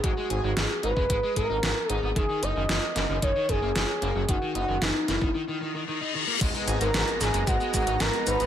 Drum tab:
CC |----------------|----------------|----------------|x---------------|
HH |x-x-x-x-x-x-x-x-|x-x-x-x-x-x-x-x-|x-x-x-x---------|x-xxxxxxx-xxxxxx|
SH |----------------|----------------|----------------|xxxxxxxxxxxxxxxx|
SD |----o-------o---|----o-o-----o---|----o-o---------|----o-o-----o---|
BD |o------oo-o-----|o-------o-o-----|o------o--------|o-------o-o-----|